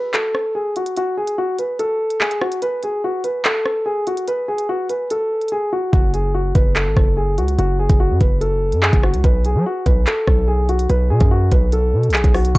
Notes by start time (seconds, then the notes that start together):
Already playing: B4
0.14 A4, clap, closed hi-hat
0.35 cross-stick
0.55 G#4
0.76 F#4, closed hi-hat
0.86 closed hi-hat
0.97 F#4, closed hi-hat
1.17 G#4
1.27 closed hi-hat
1.38 F#4
1.59 B4, closed hi-hat
1.79 A4, closed hi-hat
2.10 closed hi-hat
2.20 G#4, clap
2.31 closed hi-hat
2.41 F#4, cross-stick
2.52 closed hi-hat
2.62 B4, closed hi-hat
2.83 G#4, closed hi-hat
3.04 F#4
3.24 B4, closed hi-hat
3.45 A4, clap, closed hi-hat
3.66 cross-stick
3.86 G#4
4.07 F#4, closed hi-hat
4.17 closed hi-hat
4.28 B4, closed hi-hat
4.48 G#4
4.58 closed hi-hat
4.69 F#4
4.89 B4, closed hi-hat
5.10 A4, closed hi-hat
5.41 closed hi-hat
5.48 G#4, closed hi-hat
5.73 F#4
5.93 F#1 F#4, kick, closed hi-hat
6.14 G#4, closed hi-hat
6.34 F#4
6.55 F#1 B4, kick, closed hi-hat
6.76 A4, clap, closed hi-hat
6.86 G#1
6.97 F#1, kick, cross-stick
7.17 G#4
7.38 C#2 F#4, closed hi-hat
7.48 closed hi-hat
7.59 F#1 F#4, closed hi-hat
7.79 G#4
7.89 F#1, kick, closed hi-hat
8.00 F#4
8.10 F#2
8.21 F#1 B4, kick, closed hi-hat
8.41 A4, closed hi-hat
8.72 F#2, closed hi-hat
8.82 G#4, clap
8.93 F#1, kick, closed hi-hat
9.03 F#4, cross-stick
9.14 C#2, closed hi-hat
9.24 B1 B4, kick, closed hi-hat
9.45 G#4, closed hi-hat
9.55 F#3
9.66 F#4
9.86 B1 B4, kick, closed hi-hat
10.07 A4, clap, closed hi-hat
10.27 B1, kick, cross-stick
10.48 G#4
10.69 F#4, closed hi-hat
10.79 closed hi-hat
10.89 B1 B4, closed hi-hat
11.10 B2 G#4
11.20 F#2, kick, closed hi-hat
11.31 F#4
11.51 B1 B4, kick, closed hi-hat
11.72 A4, closed hi-hat
11.93 B2
12.03 closed hi-hat
12.09 B1, closed hi-hat
12.14 G#4, clap, closed hi-hat
12.24 B1, kick, closed hi-hat
12.34 F#4, cross-stick, open hi-hat
12.45 closed hi-hat
12.55 F#1 F#4 C#5 E5 A5 C#6, kick, closed hi-hat